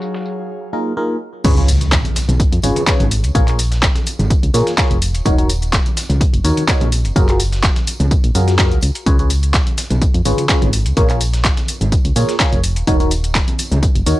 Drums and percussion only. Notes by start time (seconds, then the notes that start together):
0.02 tambourine
0.14 snare
0.25 tambourine
1.44 kick, closed hi-hat, crash, tambourine, shaker
1.57 closed hi-hat, tambourine
1.68 open hi-hat, tambourine, shaker
1.81 closed hi-hat, tambourine, shaker
1.92 kick, snare, clap, closed hi-hat, tambourine, shaker
2.04 closed hi-hat, tambourine, high conga
2.16 snare, open hi-hat, tambourine, shaker
2.29 closed hi-hat, tambourine, high conga, shaker
2.40 kick, closed hi-hat, tambourine, shaker
2.53 closed hi-hat, tambourine
2.62 open hi-hat, tambourine, shaker
2.76 closed hi-hat, tambourine, high conga, shaker
2.87 kick, snare, clap, closed hi-hat, tambourine, shaker
3.00 closed hi-hat, tambourine, high conga
3.11 open hi-hat, tambourine, shaker
3.23 closed hi-hat, tambourine, shaker
3.35 kick, closed hi-hat, tambourine, shaker
3.48 clap, closed hi-hat, tambourine
3.59 open hi-hat, tambourine, shaker
3.72 snare, closed hi-hat, tambourine, shaker
3.83 kick, snare, clap, closed hi-hat, tambourine, shaker
3.95 snare, closed hi-hat, tambourine, high conga
4.06 open hi-hat, tambourine, shaker
4.19 closed hi-hat, tambourine, high conga, shaker
4.30 kick, closed hi-hat, tambourine, shaker
4.43 closed hi-hat, tambourine
4.54 open hi-hat, tambourine, high conga, shaker
4.67 snare, closed hi-hat, tambourine, shaker
4.78 kick, snare, clap, closed hi-hat, tambourine, shaker
4.91 closed hi-hat, tambourine
5.01 open hi-hat, tambourine, shaker
5.14 closed hi-hat, tambourine, shaker
5.25 kick, closed hi-hat, tambourine, shaker
5.38 closed hi-hat
5.49 open hi-hat, tambourine, shaker
5.62 closed hi-hat, tambourine, shaker
5.73 kick, snare, clap, closed hi-hat, tambourine, shaker
5.85 closed hi-hat, tambourine, high conga
5.97 snare, open hi-hat, tambourine, shaker
6.10 closed hi-hat, tambourine, high conga, shaker
6.21 kick, closed hi-hat, tambourine, shaker
6.33 closed hi-hat, tambourine
6.45 open hi-hat, tambourine, shaker
6.57 closed hi-hat, tambourine, high conga, shaker
6.68 kick, snare, clap, closed hi-hat, tambourine, shaker
6.80 closed hi-hat, tambourine, high conga
6.92 open hi-hat, tambourine, shaker
7.05 closed hi-hat, tambourine, shaker
7.16 kick, closed hi-hat, tambourine, shaker
7.29 clap, closed hi-hat
7.40 open hi-hat, tambourine, shaker
7.52 snare, closed hi-hat, tambourine, shaker
7.63 kick, snare, clap, closed hi-hat, tambourine, shaker
7.76 snare, closed hi-hat, tambourine, high conga
7.87 open hi-hat, tambourine, shaker
8.00 closed hi-hat, tambourine, high conga, shaker
8.11 kick, closed hi-hat, tambourine, shaker
8.24 closed hi-hat, tambourine
8.35 open hi-hat, tambourine, high conga, shaker
8.47 snare, closed hi-hat, tambourine, shaker
8.58 kick, snare, clap, closed hi-hat, tambourine, shaker
8.71 closed hi-hat, tambourine
8.81 open hi-hat, tambourine, shaker
8.95 closed hi-hat, tambourine, shaker
9.06 kick, closed hi-hat, tambourine, shaker
9.19 closed hi-hat, tambourine
9.30 open hi-hat, tambourine, shaker
9.43 closed hi-hat, tambourine, shaker
9.54 kick, snare, clap, closed hi-hat, tambourine, shaker
9.67 closed hi-hat, tambourine, high conga
9.77 snare, open hi-hat, tambourine, shaker
9.90 closed hi-hat, tambourine, high conga, shaker
10.02 kick, closed hi-hat, tambourine, shaker
10.14 closed hi-hat, tambourine
10.25 open hi-hat, tambourine, shaker
10.37 closed hi-hat, tambourine, high conga, shaker
10.49 kick, snare, clap, closed hi-hat, tambourine, shaker
10.62 closed hi-hat, tambourine, high conga
10.73 open hi-hat, tambourine, shaker
10.85 closed hi-hat, tambourine, shaker
10.97 kick, closed hi-hat, tambourine, shaker
11.09 clap, closed hi-hat, tambourine
11.21 open hi-hat, tambourine, shaker
11.33 snare, closed hi-hat, tambourine, shaker
11.44 kick, snare, clap, closed hi-hat, tambourine, shaker
11.57 snare, closed hi-hat, tambourine, high conga
11.68 open hi-hat, tambourine, shaker
11.81 closed hi-hat, tambourine, high conga, shaker
11.92 kick, closed hi-hat, tambourine, shaker
12.05 closed hi-hat, tambourine
12.16 open hi-hat, tambourine, high conga, shaker
12.28 snare, closed hi-hat, tambourine, shaker
12.40 kick, snare, clap, closed hi-hat, tambourine, shaker
12.52 closed hi-hat, tambourine
12.63 open hi-hat, tambourine, shaker
12.76 closed hi-hat, tambourine, shaker
12.87 kick, closed hi-hat, tambourine, shaker
13.00 closed hi-hat, tambourine
13.11 open hi-hat, tambourine, shaker
13.24 closed hi-hat, tambourine, shaker
13.35 kick, snare, clap, closed hi-hat, tambourine, shaker
13.47 closed hi-hat, tambourine, high conga
13.59 open hi-hat, tambourine, shaker
13.72 closed hi-hat, tambourine, high conga, shaker
13.83 kick, closed hi-hat, tambourine, shaker
13.95 closed hi-hat, tambourine
14.06 open hi-hat, tambourine, shaker